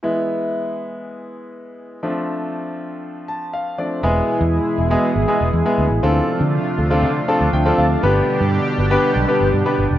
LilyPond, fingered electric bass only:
\new Staff \with { instrumentName = "Fingered electric bass" } { \clef bass \time 4/4 \key e \phrygian \tempo 4 = 120 r1 | r1 | e,,8 r16 e,8 r16 e,,8 r16 gis,,16 r16 e,,16 e,16 r16 d,16 a,,16 | d,8 r16 d8 r16 d,8 d8 r16 d,16 d,8 d,8 |
g,,8 r16 g,8 r16 g,,8 r16 b,,16 r16 g,,16 g,16 r16 g,,16 e,,16 | }